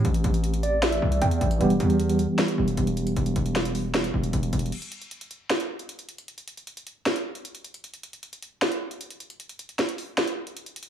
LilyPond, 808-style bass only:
\new Staff \with { instrumentName = "808-style bass" } { \clef bass \time 4/4 \key e \phrygian \tempo 4 = 154 a,,8 a,,2 c,8 e,8 a,,8 | e,,8 e,4~ e,16 r8. e,,8 e,,4 | e,,8 e,,2 e,,8 e,,8 e,,8 | r1 |
r1 | r1 | r1 | }